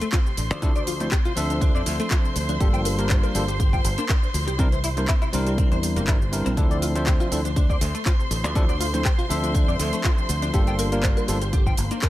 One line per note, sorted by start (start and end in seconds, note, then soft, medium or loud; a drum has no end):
0.00 0.07 A3 medium
0.00 0.04 A3 loud
0.00 6.56 C5 medium
0.00 6.56 C6 medium
0.00 closed hi-hat medium
0.00 shaker soft
0.12 0.18 C4 medium
0.12 0.17 F4 medium
0.12 kick loud
0.12 clap loud
0.12 closed hi-hat medium
0.12 shaker soft
0.26 0.31 C3 medium
0.26 shaker soft
0.37 0.51 A1 loud
0.37 0.43 D3 medium
0.37 open hi-hat loud
0.37 shaker medium
0.51 1.08 D2 loud
0.51 0.58 F3 medium
0.51 0.57 D4 medium
0.51 closed hi-hat medium
0.51 shaker soft
0.62 0.68 C3 medium
0.62 0.70 F3 loud
0.62 0.70 C4 medium
0.62 0.71 D4 medium
0.62 0.69 D4 loud
0.62 0.71 E4 medium
0.62 0.71 A4 loud
0.62 kick loud
0.62 closed hi-hat medium
0.62 shaker soft
0.76 0.80 D3 loud
0.76 0.81 D5 medium
0.76 closed hi-hat soft
0.76 shaker soft
0.87 0.90 F3 medium
0.87 0.91 F4 loud
0.87 open hi-hat loud
0.87 shaker medium
1.00 1.07 F3 medium
1.00 1.03 A3 loud
1.00 1.07 C4 medium
1.00 1.07 D4 medium
1.00 1.08 E4 medium
1.00 1.08 C5 medium
1.00 closed hi-hat medium
1.00 shaker soft
1.11 1.17 C4 medium
1.11 1.16 G4 loud
1.11 kick loud
1.11 clap loud
1.11 closed hi-hat medium
1.11 shaker soft
1.25 1.30 C3 medium
1.25 1.31 F4 loud
1.25 closed hi-hat soft
1.25 shaker soft
1.35 1.71 D2 medium
1.35 1.42 D3 medium
1.35 2.57 F3 medium
1.35 2.58 C4 medium
1.35 2.58 D4 medium
1.35 1.43 D4 loud
1.35 2.58 A4 loud
1.35 2.58 E5 medium
1.35 open hi-hat loud
1.35 shaker medium
1.50 1.57 F3 medium
1.50 1.56 D4 medium
1.50 closed hi-hat medium
1.50 shaker soft
1.61 1.67 C3 medium
1.61 1.71 D4 medium
1.61 kick loud
1.61 closed hi-hat medium
1.61 shaker soft
1.75 1.84 F2 loud
1.75 1.79 D3 loud
1.75 1.81 D5 medium
1.75 shaker soft
1.86 1.97 D2 loud
1.86 1.89 F3 medium
1.86 open hi-hat loud
1.86 shaker medium
2.00 2.02 A3 loud
2.00 2.05 A3 medium
2.00 closed hi-hat medium
2.00 shaker soft
2.11 2.16 C4 medium
2.11 2.15 F4 medium
2.11 kick loud
2.11 clap loud
2.11 closed hi-hat medium
2.11 shaker soft
2.25 2.29 C3 medium
2.25 shaker soft
2.36 2.57 D2 loud
2.36 2.41 D3 medium
2.36 open hi-hat loud
2.36 shaker medium
2.49 2.56 F3 medium
2.49 2.55 D4 medium
2.49 closed hi-hat medium
2.49 shaker soft
2.60 3.20 G1 loud
2.60 2.66 D3 medium
2.60 2.95 G3 medium
2.60 2.95 A#3 medium
2.60 2.96 D4 medium
2.60 2.96 F4 medium
2.60 2.67 G4 loud
2.60 2.96 A4 medium
2.60 kick loud
2.60 closed hi-hat medium
2.60 shaker soft
2.74 2.78 F3 loud
2.74 2.79 G5 medium
2.74 closed hi-hat soft
2.74 shaker soft
2.85 2.88 G3 medium
2.85 2.89 A#4 loud
2.85 open hi-hat loud
2.85 shaker medium
2.98 3.32 G3 medium
2.98 3.32 A#3 medium
2.98 3.01 A#3 loud
2.98 3.32 D4 medium
2.98 3.32 F4 medium
2.98 3.32 A#4 medium
2.98 closed hi-hat medium
2.98 shaker soft
3.09 3.15 D4 medium
3.09 3.14 C5 loud
3.09 kick loud
3.09 clap loud
3.09 closed hi-hat medium
3.09 shaker soft
3.23 3.28 D3 medium
3.23 3.29 A#4 loud
3.23 closed hi-hat soft
3.23 shaker soft
3.34 3.81 G1 medium
3.34 3.40 F3 medium
3.34 3.43 G3 medium
3.34 3.43 A#3 medium
3.34 3.43 D4 medium
3.34 3.44 F4 medium
3.34 3.42 G4 loud
3.34 3.44 A4 medium
3.34 open hi-hat loud
3.34 shaker medium
3.48 3.55 G3 medium
3.48 3.54 G4 medium
3.48 closed hi-hat medium
3.48 shaker soft
3.60 3.65 D3 medium
3.60 3.70 G4 medium
3.60 kick loud
3.60 closed hi-hat medium
3.60 shaker soft
3.73 3.78 F3 loud
3.73 3.79 G5 medium
3.73 kick medium
3.73 shaker soft
3.84 3.95 G1 loud
3.84 3.88 G3 medium
3.84 open hi-hat loud
3.84 shaker medium
3.98 4.01 A#3 loud
3.98 4.04 D4 medium
3.98 closed hi-hat medium
3.98 shaker soft
4.09 4.14 D4 medium
4.09 4.13 A#4 medium
4.09 kick loud
4.09 clap loud
4.09 closed hi-hat medium
4.09 shaker soft
4.23 4.27 D3 medium
4.23 shaker soft
4.34 4.47 D2 loud
4.34 4.39 F3 medium
4.34 open hi-hat loud
4.34 shaker medium
4.47 5.05 C2 loud
4.47 4.54 G3 medium
4.47 4.53 G4 medium
4.47 closed hi-hat medium
4.47 shaker soft
4.59 4.64 C3 medium
4.59 4.67 G3 loud
4.59 4.67 C4 medium
4.59 4.66 C4 loud
4.59 4.67 D4 medium
4.59 4.67 E4 medium
4.59 4.68 A#4 loud
4.59 kick loud
4.59 closed hi-hat medium
4.59 shaker soft
4.72 4.77 E3 loud
4.72 4.78 C5 medium
4.72 closed hi-hat soft
4.72 shaker soft
4.84 4.87 G3 medium
4.84 4.88 E4 loud
4.84 open hi-hat loud
4.84 shaker medium
4.97 5.04 G3 medium
4.97 5.00 A#3 loud
4.97 5.04 C4 medium
4.97 5.04 D4 medium
4.97 5.04 E4 medium
4.97 5.05 C5 medium
4.97 closed hi-hat medium
4.97 shaker soft
5.08 5.14 C4 medium
5.08 5.13 E4 loud
5.08 kick loud
5.08 clap loud
5.08 closed hi-hat medium
5.08 shaker soft
5.22 5.26 C3 medium
5.22 5.28 E4 loud
5.22 closed hi-hat soft
5.22 shaker soft
5.33 5.68 C2 medium
5.33 5.39 E3 medium
5.33 6.05 G3 medium
5.33 6.05 C4 medium
5.33 5.40 C4 loud
5.33 6.06 D4 medium
5.33 6.06 E4 medium
5.33 6.06 A#4 loud
5.33 open hi-hat loud
5.33 shaker medium
5.46 5.53 G3 medium
5.46 5.52 C4 medium
5.46 closed hi-hat soft
5.46 shaker soft
5.58 5.63 C3 medium
5.58 5.68 C4 medium
5.58 kick loud
5.58 closed hi-hat medium
5.58 shaker soft
5.71 5.97 E2 medium
5.71 5.76 E3 loud
5.71 5.77 C5 medium
5.71 closed hi-hat soft
5.71 shaker soft
5.83 5.86 G3 medium
5.83 open hi-hat loud
5.83 shaker medium
5.96 6.42 G1 medium
5.96 6.02 G3 medium
5.96 5.99 A#3 loud
5.96 closed hi-hat medium
5.96 shaker soft
6.07 6.16 G3 medium
6.07 6.16 C4 medium
6.07 6.13 C4 medium
6.07 6.16 D4 medium
6.07 6.12 E4 medium
6.07 6.16 E4 medium
6.07 6.16 A#4 medium
6.07 kick loud
6.07 clap loud
6.07 closed hi-hat medium
6.07 shaker soft
6.21 6.26 C3 medium
6.21 shaker soft
6.32 6.38 E3 medium
6.32 6.54 G3 medium
6.32 6.54 C4 medium
6.32 6.55 D4 medium
6.32 6.55 E4 medium
6.32 6.55 A#4 medium
6.32 open hi-hat loud
6.32 shaker medium
6.46 6.55 A#1 medium
6.46 6.52 G3 medium
6.46 6.52 C4 medium
6.46 closed hi-hat medium
6.46 shaker soft
6.57 7.16 D2 loud
6.57 6.62 C3 medium
6.57 6.92 F3 medium
6.57 6.92 C4 medium
6.57 6.92 D4 medium
6.57 6.64 D4 loud
6.57 6.92 E4 medium
6.57 6.93 A4 loud
6.57 12.09 C5 medium
6.57 12.09 C6 medium
6.57 kick loud
6.57 closed hi-hat medium
6.57 shaker soft
6.71 6.75 D3 loud
6.71 6.77 D5 medium
6.71 closed hi-hat soft
6.71 shaker soft
6.82 6.90 A3 medium
6.82 6.86 F4 loud
6.82 open hi-hat loud
6.82 shaker medium
6.95 7.29 F3 medium
6.95 6.98 A3 loud
6.95 7.29 C4 medium
6.95 7.29 D4 medium
6.95 7.29 C5 medium
6.95 7.29 E5 medium
6.95 closed hi-hat medium
6.95 shaker soft
7.06 7.12 C4 medium
7.06 7.11 G4 loud
7.06 kick loud
7.06 clap loud
7.06 closed hi-hat medium
7.06 shaker soft
7.20 7.25 C3 medium
7.20 7.26 F4 loud
7.20 closed hi-hat soft
7.20 shaker soft
7.31 7.78 D2 medium
7.31 7.37 D3 medium
7.31 7.40 F3 medium
7.31 7.40 C4 medium
7.31 7.38 D4 loud
7.31 7.40 D4 medium
7.31 7.40 E4 medium
7.31 7.40 A4 medium
7.31 open hi-hat loud
7.31 shaker medium
7.45 7.52 F3 medium
7.45 7.51 D4 medium
7.45 closed hi-hat soft
7.45 shaker soft
7.56 7.62 C3 medium
7.56 7.66 D4 medium
7.56 kick loud
7.56 closed hi-hat medium
7.56 shaker soft
7.70 7.74 D3 loud
7.70 7.76 D5 medium
7.70 kick medium
7.70 shaker soft
7.81 7.92 D2 loud
7.81 7.89 A3 medium
7.81 open hi-hat loud
7.81 shaker medium
7.95 8.00 A3 medium
7.95 7.97 A3 loud
7.95 closed hi-hat medium
7.95 shaker soft
8.05 8.11 C4 medium
8.05 8.10 F4 medium
8.05 kick loud
8.05 clap loud
8.05 closed hi-hat medium
8.05 shaker soft
8.19 8.24 C3 medium
8.19 shaker soft
8.31 8.44 A1 loud
8.31 8.36 D3 medium
8.31 open hi-hat loud
8.31 shaker medium
8.44 9.02 D2 loud
8.44 8.51 F3 medium
8.44 8.50 D4 medium
8.44 closed hi-hat medium
8.44 shaker soft
8.55 8.61 C3 medium
8.55 8.64 F3 loud
8.55 8.64 C4 medium
8.55 8.64 D4 medium
8.55 8.62 D4 loud
8.55 8.64 E4 medium
8.55 8.64 A4 loud
8.55 kick loud
8.55 closed hi-hat medium
8.55 shaker soft
8.69 8.73 D3 loud
8.69 8.75 D5 medium
8.69 closed hi-hat soft
8.69 shaker soft
8.80 8.88 A3 medium
8.80 8.84 F4 loud
8.80 open hi-hat loud
8.80 shaker medium
8.93 9.01 F3 medium
8.93 8.96 A3 loud
8.93 9.01 C4 medium
8.93 9.01 D4 medium
8.93 9.01 E4 medium
8.93 9.01 C5 medium
8.93 closed hi-hat medium
8.93 shaker soft
9.05 9.10 C4 medium
9.05 9.09 G4 loud
9.05 kick loud
9.05 clap loud
9.05 closed hi-hat medium
9.05 shaker soft
9.18 9.23 C3 medium
9.18 9.24 F4 loud
9.18 closed hi-hat soft
9.18 shaker soft
9.29 9.64 D2 medium
9.29 9.35 D3 medium
9.29 10.51 F3 medium
9.29 10.51 C4 medium
9.29 9.37 D4 loud
9.29 10.51 D4 medium
9.29 10.52 A4 loud
9.29 10.51 E5 medium
9.29 open hi-hat loud
9.29 shaker medium
9.43 9.50 F3 medium
9.43 9.49 D4 medium
9.43 closed hi-hat medium
9.43 shaker soft
9.55 9.60 C3 medium
9.55 9.65 D4 medium
9.55 kick loud
9.55 closed hi-hat medium
9.55 shaker soft
9.68 9.77 F2 loud
9.68 9.73 D3 loud
9.68 9.74 D5 medium
9.68 shaker soft
9.79 9.90 D2 loud
9.79 9.87 A3 medium
9.79 open hi-hat loud
9.79 shaker medium
9.93 9.99 A3 medium
9.93 9.96 A3 loud
9.93 closed hi-hat medium
9.93 shaker soft
10.04 10.10 C4 medium
10.04 10.08 F4 medium
10.04 kick loud
10.04 clap loud
10.04 closed hi-hat medium
10.04 shaker soft
10.18 10.22 C3 medium
10.18 shaker soft
10.29 10.50 D2 loud
10.29 10.34 D3 medium
10.29 open hi-hat loud
10.29 shaker medium
10.42 10.49 F3 medium
10.42 10.48 D4 medium
10.42 closed hi-hat medium
10.42 shaker soft
10.53 11.13 G1 loud
10.53 10.59 D3 medium
10.53 10.89 G3 medium
10.53 10.89 A#3 medium
10.53 10.89 D4 medium
10.53 10.89 F4 medium
10.53 10.61 G4 loud
10.53 10.89 A4 loud
10.53 kick loud
10.53 closed hi-hat medium
10.53 shaker soft
10.67 10.72 F3 loud
10.67 10.73 G5 medium
10.67 closed hi-hat soft
10.67 shaker soft
10.79 10.86 A#3 medium
10.79 10.83 A#4 loud
10.79 open hi-hat loud
10.79 shaker medium
10.92 11.25 G3 medium
10.92 11.26 A#3 medium
10.92 10.95 A#3 loud
10.92 11.26 D4 medium
10.92 11.26 F4 medium
10.92 11.26 A#4 medium
10.92 closed hi-hat medium
10.92 shaker soft
11.03 11.09 D4 medium
11.03 11.08 C5 loud
11.03 kick loud
11.03 clap loud
11.03 closed hi-hat medium
11.03 shaker soft
11.17 11.21 D3 medium
11.17 11.23 A#4 loud
11.17 closed hi-hat soft
11.17 shaker soft
11.28 11.75 G1 medium
11.28 11.33 F3 medium
11.28 11.36 G3 medium
11.28 11.37 A#3 medium
11.28 11.37 D4 medium
11.28 11.37 F4 medium
11.28 11.35 G4 loud
11.28 11.37 A4 medium
11.28 open hi-hat loud
11.28 shaker medium
11.42 11.48 G3 medium
11.42 11.47 G4 medium
11.42 closed hi-hat medium
11.42 shaker soft
11.53 11.58 D3 medium
11.53 11.63 G4 medium
11.53 kick loud
11.53 closed hi-hat medium
11.53 shaker soft
11.66 11.71 F3 loud
11.66 11.72 G5 medium
11.66 kick medium
11.66 shaker soft
11.77 11.89 G1 loud
11.77 11.86 A#3 medium
11.77 open hi-hat loud
11.77 shaker medium
11.91 11.94 A#3 loud
11.91 11.97 D4 medium
11.91 closed hi-hat medium
11.91 shaker soft
12.02 12.08 D4 medium
12.02 12.07 A#4 medium
12.02 kick loud
12.02 clap loud
12.02 closed hi-hat medium
12.02 shaker soft